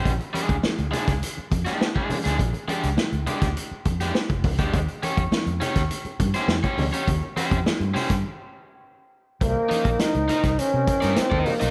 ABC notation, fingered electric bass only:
X:1
M:4/4
L:1/16
Q:1/4=103
K:Eb
V:1 name="Fingered electric bass" clef=bass
B,,, z2 D,, z D,, z _D,, z2 F,, z4 =D,, | B,,, z2 _D,, z =D,, z D,, z2 F,,2 z F,,, _D,, =D,, | E,, z2 F,, z F,, z E,, z2 G,, z F,, z D,, z | E,, z2 F,, z G,, z G,, z8 |
C,, z2 B,,, z _D,, z C,, z C, z G,, z E,, z _C,, |]